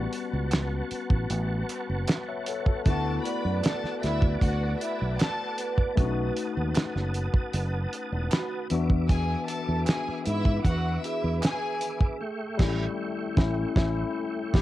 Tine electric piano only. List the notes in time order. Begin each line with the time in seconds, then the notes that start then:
Already playing: G3 B3 C#4 F#4
2.29 C#5 E5
2.48 A4 C#5
2.68 F#4 A4
2.86 A3 B3 E4
2.90 F#4
5.95 A3 C#4 D4
6.00 F#4
6.05 D#4
8.32 B5
8.70 E3 B3 D4 F#4 E5
12.57 G3 C#4 E4
13.37 C#4 E4
13.76 C#4 E4
14.54 E4 G4